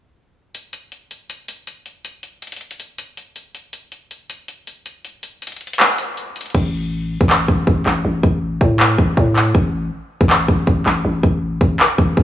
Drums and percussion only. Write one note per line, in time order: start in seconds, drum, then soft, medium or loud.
0.55 closed hi-hat medium
0.73 closed hi-hat medium
0.92 closed hi-hat medium
1.11 closed hi-hat medium
1.30 closed hi-hat medium
1.48 closed hi-hat medium
1.67 closed hi-hat medium
1.86 closed hi-hat medium
2.05 closed hi-hat medium
2.23 closed hi-hat medium
2.42 closed hi-hat soft
2.47 closed hi-hat soft
2.52 closed hi-hat medium
2.56 closed hi-hat medium
2.61 closed hi-hat medium
2.71 closed hi-hat medium
2.80 closed hi-hat medium
2.98 closed hi-hat medium
3.17 closed hi-hat medium
3.36 closed hi-hat medium
3.55 closed hi-hat medium
3.73 closed hi-hat medium
3.92 closed hi-hat medium
4.11 closed hi-hat medium
4.30 closed hi-hat medium
4.48 closed hi-hat medium
4.67 closed hi-hat medium
4.86 closed hi-hat medium
5.05 closed hi-hat medium
5.23 closed hi-hat medium
5.42 closed hi-hat medium
5.47 closed hi-hat medium
5.52 closed hi-hat soft
5.56 closed hi-hat soft
5.61 closed hi-hat soft
5.67 closed hi-hat medium
5.73 closed hi-hat medium
5.80 clap loud
5.80 closed hi-hat medium
5.98 closed hi-hat medium
6.17 closed hi-hat medium
6.36 closed hi-hat medium
6.41 closed hi-hat medium
6.46 closed hi-hat soft
6.50 closed hi-hat soft
6.55 kick loud
6.55 crash medium
7.21 kick loud
7.30 clap loud
7.48 kick medium
7.67 kick medium
7.86 clap medium
8.23 kick medium
8.61 kick medium
8.80 clap loud
8.98 kick medium
9.17 kick medium
9.36 clap medium
9.55 kick loud
10.21 kick medium
10.30 clap loud
10.48 kick medium
10.67 kick medium
10.86 clap medium
11.23 kick medium
11.61 kick loud
11.80 clap loud
11.98 kick medium
12.17 kick medium